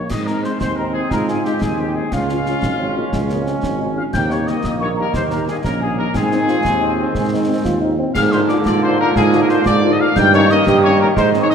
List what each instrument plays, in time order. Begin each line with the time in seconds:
Already playing: trumpet section C#5
0.09 tuba G#2, trombone section G#3 C4, euphonium C4, trumpet section D#5, piccolo D#6, concert bass drum, snare, crash
0.26 french horn section G#3 C4 D#4, trumpet section A#4, piccolo A#5, snare
0.43 french horn section G#3 C4 D#4, trumpet section C5, piccolo C6, snare
0.60 tuba D#2, trumpet section C5, piccolo C6, concert bass drum, snare
0.77 french horn section G#3 C4 D#4, trumpet section A#4, piccolo A#5
0.94 french horn section G#3 C4 D#4, trumpet section G#4, piccolo G#5
1.11 tuba G#2, euphonium F4, trumpet section A#4, piccolo A#5, concert bass drum, snare
1.28 french horn section G#3 C4 D#4, trumpet section G#4, piccolo G#5, snare
1.45 french horn section G#3 C4 D#4, trumpet section G4, piccolo G5, snare
1.61 tuba D#2, euphonium D#4, trumpet section G#4, piccolo G#5, concert bass drum, snare
1.78 french horn section G#3 C4 D#4, trumpet section G4, piccolo G5
1.95 french horn section G#3 C4 D#4, trumpet section G#4, piccolo G#5
2.12 tuba C#2, trombone section G#3 C#4, euphonium C#4, trumpet section F4, piccolo F5, concert bass drum, snare, crash
2.29 french horn section G#3 C#4 F4, snare
2.46 french horn section G#3 C#4 F4, snare
2.61 tuba G#1, euphonium C#4, concert bass drum, snare
2.78 french horn section G#3 C#4 F4, euphonium C4
2.96 french horn section G#3 C#4 F4, euphonium A#3
3.12 tuba C#2, euphonium G#3, concert bass drum, snare
3.29 french horn section G#3 C#4 F4, euphonium A#3, snare
3.45 french horn section G#3 C#4 F4, euphonium C4, snare
3.62 tuba G#1, euphonium C#4, concert bass drum, snare
3.79 french horn section G#3 C#4 F4, euphonium D#4
3.96 french horn section G#3 C#4 F4, euphonium C#4, trumpet section F5, piccolo F6
4.13 tuba D#2, trombone section D#3 A#3, euphonium C4, trumpet section G5, piccolo G6, concert bass drum, snare, crash
4.30 french horn section G3 A#3 D#4, trumpet section C#5, piccolo C#6, snare
4.46 french horn section G3 A#3 D#4, trumpet section D#5, piccolo D#6, snare
4.63 tuba A#1, euphonium A#3, trumpet section D#5, piccolo D#6, concert bass drum, snare
4.80 french horn section G3 A#3 D#4, trumpet section C#5, piccolo C#6
4.96 french horn section G3 A#3 D#4, trumpet section A#4, piccolo A#5
5.13 tuba D#2, euphonium D#4, trumpet section C5, piccolo C6, concert bass drum, snare
5.30 french horn section G3 A#3 D#4, trumpet section A#4, piccolo A#5, snare
5.48 french horn section G3 A#3 D#4, trumpet section G#4, piccolo G#5, snare
5.63 tuba A#1, euphonium C#4, trumpet section A#4, piccolo A#5, concert bass drum, snare
5.80 french horn section G3 A#3 D#4, trumpet section G#4, piccolo G#5
5.97 french horn section G3 A#3 D#4, trumpet section A#4, piccolo A#5
6.14 tuba G#2, trombone section D#3 C4, euphonium C4, trumpet section G#4, piccolo G#5, concert bass drum, snare, crash
6.31 french horn section C4 D#4, euphonium D#4, snare
6.47 french horn section C4 D#4, euphonium F4, snare
6.64 tuba D#2, concert bass drum, snare
6.80 french horn section C4 D#4
6.97 french horn section C4 D#4
7.14 tuba G#2, euphonium D#4, concert bass drum, snare
7.31 french horn section C4 D#4
7.48 french horn section C4 D#4
7.65 tuba D#2, euphonium F4, concert bass drum, snare
7.81 french horn section C4 D#4, euphonium D#4
7.98 french horn section C4 D#4, euphonium C4
8.14 tuba G#2, trombone section D3 A#3, euphonium G#4, trumpet section F5, piccolo F6, concert bass drum, snare, crash
8.31 french horn section A#3 D4 F4, trumpet section C5, piccolo C6, snare
8.48 french horn section A#3 D4 F4, trumpet section D5, piccolo D6, snare
8.65 tuba G#2, euphonium F4, trumpet section D5, piccolo D6, concert bass drum, snare
8.82 french horn section A#3 D4 F4, trumpet section C5, piccolo C6
8.99 french horn section A#3 D4 F4, trumpet section A#4, piccolo A#5
9.15 tuba G#2, trumpet section G#4, piccolo G#5, concert bass drum, snare
9.33 french horn section A#3 D4 F4, snare
9.41 trumpet section A#4, piccolo A#5
9.49 french horn section A#3 D4 F4, trumpet section C5, piccolo C6, snare
9.66 tuba G#2, trumpet section D5, piccolo D6, concert bass drum, snare
9.83 french horn section A#3 D4 F4
9.92 trumpet section D#5, piccolo D#6
9.99 french horn section A#3 D4 F4, trumpet section F5, piccolo F6
10.16 tuba G2, trombone section D#3 A#3, euphonium D#4, trumpet section G5, piccolo G6, concert bass drum, snare, crash
10.33 french horn section A#3 C#4 D#4, trumpet section C#5, piccolo C#6, snare
10.50 french horn section A#3 C#4 D#4, trumpet section D#5, piccolo D#6, snare
10.66 tuba G2, euphonium G4, trumpet section D#5, piccolo D#6, concert bass drum, snare
10.83 french horn section A#3 C#4 D#4, trumpet section C#5, piccolo C#6
11.00 french horn section A#3 C#4 D#4, trumpet section A#4, piccolo A#5
11.16 tuba G#2, trombone section G#3, euphonium D#4, trumpet section C5, piccolo C6, concert bass drum, snare
11.34 french horn section G#3 C4 D#4, snare
11.41 trumpet section C#5, piccolo C#6
11.49 french horn section G#3 C4 D#4, trumpet section D#5, piccolo D#6, snare